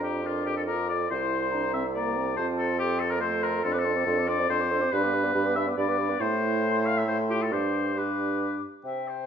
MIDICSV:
0, 0, Header, 1, 6, 480
1, 0, Start_track
1, 0, Tempo, 425532
1, 1239, Time_signature, 3, 2, 24, 8
1, 6995, Tempo, 440529
1, 10332, End_track
2, 0, Start_track
2, 0, Title_t, "Flute"
2, 0, Program_c, 0, 73
2, 0, Note_on_c, 0, 82, 43
2, 263, Note_off_c, 0, 82, 0
2, 273, Note_on_c, 0, 86, 47
2, 740, Note_off_c, 0, 86, 0
2, 747, Note_on_c, 0, 86, 53
2, 1223, Note_off_c, 0, 86, 0
2, 1233, Note_on_c, 0, 84, 49
2, 1709, Note_on_c, 0, 82, 54
2, 1726, Note_off_c, 0, 84, 0
2, 2193, Note_off_c, 0, 82, 0
2, 2201, Note_on_c, 0, 82, 57
2, 2670, Note_on_c, 0, 81, 49
2, 2687, Note_off_c, 0, 82, 0
2, 3144, Note_off_c, 0, 81, 0
2, 3151, Note_on_c, 0, 84, 61
2, 3418, Note_off_c, 0, 84, 0
2, 3637, Note_on_c, 0, 84, 72
2, 4105, Note_off_c, 0, 84, 0
2, 4110, Note_on_c, 0, 84, 56
2, 4219, Note_on_c, 0, 86, 58
2, 4236, Note_off_c, 0, 84, 0
2, 4342, Note_on_c, 0, 84, 57
2, 4359, Note_off_c, 0, 86, 0
2, 4472, Note_on_c, 0, 86, 55
2, 4489, Note_off_c, 0, 84, 0
2, 4581, Note_off_c, 0, 86, 0
2, 4588, Note_on_c, 0, 84, 57
2, 4726, Note_on_c, 0, 86, 59
2, 4743, Note_off_c, 0, 84, 0
2, 4835, Note_on_c, 0, 84, 53
2, 4852, Note_off_c, 0, 86, 0
2, 4972, Note_on_c, 0, 86, 62
2, 4988, Note_off_c, 0, 84, 0
2, 5071, Note_off_c, 0, 86, 0
2, 5078, Note_on_c, 0, 84, 68
2, 5201, Note_on_c, 0, 86, 63
2, 5218, Note_off_c, 0, 84, 0
2, 5316, Note_on_c, 0, 84, 52
2, 5333, Note_off_c, 0, 86, 0
2, 5427, Note_on_c, 0, 86, 61
2, 5444, Note_off_c, 0, 84, 0
2, 5548, Note_off_c, 0, 86, 0
2, 5555, Note_on_c, 0, 83, 61
2, 5681, Note_on_c, 0, 86, 55
2, 5698, Note_off_c, 0, 83, 0
2, 5802, Note_on_c, 0, 83, 56
2, 5819, Note_off_c, 0, 86, 0
2, 5911, Note_on_c, 0, 86, 57
2, 5928, Note_off_c, 0, 83, 0
2, 6024, Note_off_c, 0, 86, 0
2, 6030, Note_on_c, 0, 83, 60
2, 6161, Note_on_c, 0, 86, 54
2, 6177, Note_off_c, 0, 83, 0
2, 6290, Note_on_c, 0, 83, 52
2, 6307, Note_off_c, 0, 86, 0
2, 6413, Note_on_c, 0, 86, 62
2, 6430, Note_off_c, 0, 83, 0
2, 6520, Note_off_c, 0, 86, 0
2, 6527, Note_on_c, 0, 83, 63
2, 6646, Note_on_c, 0, 86, 61
2, 6663, Note_off_c, 0, 83, 0
2, 6774, Note_on_c, 0, 83, 53
2, 6791, Note_off_c, 0, 86, 0
2, 6881, Note_on_c, 0, 86, 58
2, 6898, Note_off_c, 0, 83, 0
2, 6999, Note_off_c, 0, 86, 0
2, 7015, Note_on_c, 0, 84, 61
2, 7908, Note_off_c, 0, 84, 0
2, 7949, Note_on_c, 0, 84, 63
2, 8432, Note_on_c, 0, 86, 52
2, 8448, Note_off_c, 0, 84, 0
2, 8905, Note_off_c, 0, 86, 0
2, 8911, Note_on_c, 0, 86, 58
2, 9627, Note_off_c, 0, 86, 0
2, 9876, Note_on_c, 0, 79, 44
2, 10332, Note_off_c, 0, 79, 0
2, 10332, End_track
3, 0, Start_track
3, 0, Title_t, "Oboe"
3, 0, Program_c, 1, 68
3, 33, Note_on_c, 1, 67, 57
3, 289, Note_on_c, 1, 65, 56
3, 306, Note_off_c, 1, 67, 0
3, 513, Note_off_c, 1, 65, 0
3, 520, Note_on_c, 1, 67, 72
3, 637, Note_off_c, 1, 67, 0
3, 642, Note_on_c, 1, 69, 63
3, 695, Note_off_c, 1, 69, 0
3, 757, Note_on_c, 1, 70, 82
3, 992, Note_off_c, 1, 70, 0
3, 1003, Note_on_c, 1, 74, 70
3, 1236, Note_off_c, 1, 74, 0
3, 1247, Note_on_c, 1, 72, 82
3, 1949, Note_off_c, 1, 72, 0
3, 1958, Note_on_c, 1, 76, 77
3, 2066, Note_off_c, 1, 76, 0
3, 2193, Note_on_c, 1, 74, 74
3, 2663, Note_off_c, 1, 74, 0
3, 2670, Note_on_c, 1, 72, 88
3, 2778, Note_off_c, 1, 72, 0
3, 2914, Note_on_c, 1, 69, 76
3, 3143, Note_off_c, 1, 69, 0
3, 3150, Note_on_c, 1, 67, 91
3, 3384, Note_on_c, 1, 69, 83
3, 3401, Note_off_c, 1, 67, 0
3, 3503, Note_on_c, 1, 70, 86
3, 3520, Note_off_c, 1, 69, 0
3, 3610, Note_off_c, 1, 70, 0
3, 3617, Note_on_c, 1, 72, 92
3, 3867, Note_on_c, 1, 70, 81
3, 3884, Note_off_c, 1, 72, 0
3, 4105, Note_on_c, 1, 69, 91
3, 4122, Note_off_c, 1, 70, 0
3, 4194, Note_on_c, 1, 71, 74
3, 4211, Note_off_c, 1, 69, 0
3, 4269, Note_on_c, 1, 69, 89
3, 4286, Note_off_c, 1, 71, 0
3, 4828, Note_on_c, 1, 74, 96
3, 4845, Note_off_c, 1, 69, 0
3, 5066, Note_off_c, 1, 74, 0
3, 5072, Note_on_c, 1, 72, 102
3, 5554, Note_on_c, 1, 71, 92
3, 5571, Note_off_c, 1, 72, 0
3, 6265, Note_off_c, 1, 71, 0
3, 6272, Note_on_c, 1, 76, 91
3, 6380, Note_off_c, 1, 76, 0
3, 6515, Note_on_c, 1, 74, 87
3, 7001, Note_on_c, 1, 72, 103
3, 7017, Note_off_c, 1, 74, 0
3, 7713, Note_on_c, 1, 77, 96
3, 7730, Note_off_c, 1, 72, 0
3, 7844, Note_on_c, 1, 76, 68
3, 7860, Note_off_c, 1, 77, 0
3, 7944, Note_off_c, 1, 76, 0
3, 7950, Note_on_c, 1, 72, 77
3, 8057, Note_off_c, 1, 72, 0
3, 8197, Note_on_c, 1, 67, 80
3, 8327, Note_on_c, 1, 69, 61
3, 8343, Note_off_c, 1, 67, 0
3, 8440, Note_on_c, 1, 72, 84
3, 8457, Note_off_c, 1, 69, 0
3, 8931, Note_on_c, 1, 71, 71
3, 8947, Note_off_c, 1, 72, 0
3, 9652, Note_off_c, 1, 71, 0
3, 9899, Note_on_c, 1, 76, 35
3, 10133, Note_on_c, 1, 72, 31
3, 10150, Note_off_c, 1, 76, 0
3, 10332, Note_off_c, 1, 72, 0
3, 10332, End_track
4, 0, Start_track
4, 0, Title_t, "Clarinet"
4, 0, Program_c, 2, 71
4, 0, Note_on_c, 2, 65, 49
4, 282, Note_on_c, 2, 70, 47
4, 298, Note_off_c, 2, 65, 0
4, 766, Note_on_c, 2, 69, 46
4, 783, Note_off_c, 2, 70, 0
4, 1248, Note_on_c, 2, 67, 56
4, 1265, Note_off_c, 2, 69, 0
4, 2671, Note_off_c, 2, 67, 0
4, 2678, Note_on_c, 2, 65, 59
4, 3155, Note_on_c, 2, 69, 55
4, 3171, Note_off_c, 2, 65, 0
4, 3619, Note_off_c, 2, 69, 0
4, 3626, Note_on_c, 2, 69, 60
4, 4099, Note_off_c, 2, 69, 0
4, 4109, Note_on_c, 2, 69, 62
4, 4233, Note_on_c, 2, 72, 56
4, 4250, Note_off_c, 2, 69, 0
4, 4355, Note_on_c, 2, 69, 58
4, 4372, Note_off_c, 2, 72, 0
4, 4472, Note_on_c, 2, 72, 60
4, 4489, Note_off_c, 2, 69, 0
4, 4584, Note_off_c, 2, 72, 0
4, 4590, Note_on_c, 2, 69, 60
4, 4716, Note_on_c, 2, 72, 51
4, 4733, Note_off_c, 2, 69, 0
4, 4834, Note_on_c, 2, 69, 55
4, 4851, Note_off_c, 2, 72, 0
4, 4960, Note_on_c, 2, 72, 55
4, 4977, Note_off_c, 2, 69, 0
4, 5072, Note_off_c, 2, 72, 0
4, 5078, Note_on_c, 2, 69, 55
4, 5199, Note_on_c, 2, 72, 55
4, 5216, Note_off_c, 2, 69, 0
4, 5317, Note_on_c, 2, 69, 60
4, 5334, Note_off_c, 2, 72, 0
4, 5439, Note_on_c, 2, 72, 59
4, 5456, Note_off_c, 2, 69, 0
4, 5550, Note_off_c, 2, 72, 0
4, 5557, Note_on_c, 2, 67, 61
4, 5672, Note_on_c, 2, 71, 58
4, 5689, Note_off_c, 2, 67, 0
4, 5797, Note_on_c, 2, 67, 57
4, 5814, Note_off_c, 2, 71, 0
4, 5920, Note_on_c, 2, 71, 53
4, 5937, Note_off_c, 2, 67, 0
4, 6024, Note_off_c, 2, 71, 0
4, 6031, Note_on_c, 2, 67, 61
4, 6147, Note_on_c, 2, 71, 53
4, 6164, Note_off_c, 2, 67, 0
4, 6270, Note_on_c, 2, 67, 65
4, 6286, Note_off_c, 2, 71, 0
4, 6397, Note_on_c, 2, 71, 57
4, 6414, Note_off_c, 2, 67, 0
4, 6508, Note_off_c, 2, 71, 0
4, 6515, Note_on_c, 2, 67, 63
4, 6641, Note_on_c, 2, 71, 56
4, 6658, Note_off_c, 2, 67, 0
4, 6754, Note_on_c, 2, 67, 56
4, 6771, Note_off_c, 2, 71, 0
4, 6876, Note_on_c, 2, 71, 56
4, 6893, Note_off_c, 2, 67, 0
4, 6986, Note_off_c, 2, 71, 0
4, 6993, Note_on_c, 2, 64, 72
4, 7761, Note_off_c, 2, 64, 0
4, 7946, Note_on_c, 2, 64, 58
4, 8179, Note_on_c, 2, 65, 56
4, 8195, Note_off_c, 2, 64, 0
4, 8420, Note_on_c, 2, 67, 58
4, 8436, Note_off_c, 2, 65, 0
4, 8910, Note_off_c, 2, 67, 0
4, 8921, Note_on_c, 2, 67, 52
4, 9632, Note_off_c, 2, 67, 0
4, 9889, Note_on_c, 2, 72, 35
4, 10325, Note_off_c, 2, 72, 0
4, 10332, End_track
5, 0, Start_track
5, 0, Title_t, "French horn"
5, 0, Program_c, 3, 60
5, 0, Note_on_c, 3, 62, 48
5, 273, Note_off_c, 3, 62, 0
5, 280, Note_on_c, 3, 62, 50
5, 767, Note_on_c, 3, 65, 51
5, 784, Note_off_c, 3, 62, 0
5, 1241, Note_on_c, 3, 64, 51
5, 1257, Note_off_c, 3, 65, 0
5, 1721, Note_off_c, 3, 64, 0
5, 1729, Note_on_c, 3, 62, 58
5, 1835, Note_off_c, 3, 62, 0
5, 1960, Note_on_c, 3, 60, 60
5, 2068, Note_off_c, 3, 60, 0
5, 2201, Note_on_c, 3, 58, 61
5, 2440, Note_on_c, 3, 60, 58
5, 2457, Note_off_c, 3, 58, 0
5, 2671, Note_off_c, 3, 60, 0
5, 2678, Note_on_c, 3, 60, 59
5, 3631, Note_on_c, 3, 57, 61
5, 3648, Note_off_c, 3, 60, 0
5, 4109, Note_off_c, 3, 57, 0
5, 4116, Note_on_c, 3, 62, 62
5, 4233, Note_on_c, 3, 60, 47
5, 4250, Note_off_c, 3, 62, 0
5, 4349, Note_on_c, 3, 62, 58
5, 4366, Note_off_c, 3, 60, 0
5, 4466, Note_on_c, 3, 60, 55
5, 4483, Note_off_c, 3, 62, 0
5, 4590, Note_off_c, 3, 60, 0
5, 4595, Note_on_c, 3, 62, 61
5, 4714, Note_on_c, 3, 60, 56
5, 4731, Note_off_c, 3, 62, 0
5, 4831, Note_on_c, 3, 62, 61
5, 4848, Note_off_c, 3, 60, 0
5, 4958, Note_on_c, 3, 60, 55
5, 4975, Note_off_c, 3, 62, 0
5, 5074, Note_off_c, 3, 60, 0
5, 5080, Note_on_c, 3, 62, 60
5, 5199, Note_on_c, 3, 60, 55
5, 5216, Note_off_c, 3, 62, 0
5, 5325, Note_on_c, 3, 62, 61
5, 5342, Note_off_c, 3, 60, 0
5, 5444, Note_on_c, 3, 60, 54
5, 5461, Note_off_c, 3, 62, 0
5, 5560, Note_off_c, 3, 60, 0
5, 5570, Note_on_c, 3, 62, 61
5, 5688, Note_on_c, 3, 59, 48
5, 5705, Note_off_c, 3, 62, 0
5, 5801, Note_on_c, 3, 62, 58
5, 5818, Note_off_c, 3, 59, 0
5, 5918, Note_on_c, 3, 59, 57
5, 5935, Note_off_c, 3, 62, 0
5, 6036, Note_off_c, 3, 59, 0
5, 6042, Note_on_c, 3, 62, 60
5, 6165, Note_on_c, 3, 59, 63
5, 6182, Note_off_c, 3, 62, 0
5, 6285, Note_on_c, 3, 62, 62
5, 6302, Note_off_c, 3, 59, 0
5, 6403, Note_on_c, 3, 59, 55
5, 6420, Note_off_c, 3, 62, 0
5, 6516, Note_off_c, 3, 59, 0
5, 6523, Note_on_c, 3, 62, 59
5, 6641, Note_on_c, 3, 59, 55
5, 6658, Note_off_c, 3, 62, 0
5, 6761, Note_on_c, 3, 62, 58
5, 6778, Note_off_c, 3, 59, 0
5, 6880, Note_on_c, 3, 59, 53
5, 6896, Note_off_c, 3, 62, 0
5, 6993, Note_off_c, 3, 59, 0
5, 7000, Note_on_c, 3, 57, 70
5, 7901, Note_off_c, 3, 57, 0
5, 7948, Note_on_c, 3, 57, 61
5, 8428, Note_on_c, 3, 62, 59
5, 8445, Note_off_c, 3, 57, 0
5, 8914, Note_off_c, 3, 62, 0
5, 8919, Note_on_c, 3, 62, 51
5, 9631, Note_off_c, 3, 62, 0
5, 9888, Note_on_c, 3, 67, 32
5, 10332, Note_off_c, 3, 67, 0
5, 10332, End_track
6, 0, Start_track
6, 0, Title_t, "Bassoon"
6, 0, Program_c, 4, 70
6, 0, Note_on_c, 4, 41, 56
6, 1191, Note_off_c, 4, 41, 0
6, 1245, Note_on_c, 4, 36, 60
6, 2675, Note_on_c, 4, 41, 67
6, 2692, Note_off_c, 4, 36, 0
6, 4107, Note_off_c, 4, 41, 0
6, 4114, Note_on_c, 4, 41, 73
6, 4537, Note_off_c, 4, 41, 0
6, 4588, Note_on_c, 4, 41, 81
6, 5015, Note_off_c, 4, 41, 0
6, 5070, Note_on_c, 4, 41, 70
6, 5496, Note_off_c, 4, 41, 0
6, 5557, Note_on_c, 4, 43, 77
6, 5979, Note_off_c, 4, 43, 0
6, 6032, Note_on_c, 4, 43, 77
6, 6456, Note_off_c, 4, 43, 0
6, 6514, Note_on_c, 4, 43, 73
6, 6938, Note_off_c, 4, 43, 0
6, 7001, Note_on_c, 4, 45, 75
6, 8431, Note_on_c, 4, 43, 61
6, 8448, Note_off_c, 4, 45, 0
6, 9645, Note_off_c, 4, 43, 0
6, 9883, Note_on_c, 4, 48, 36
6, 10332, Note_off_c, 4, 48, 0
6, 10332, End_track
0, 0, End_of_file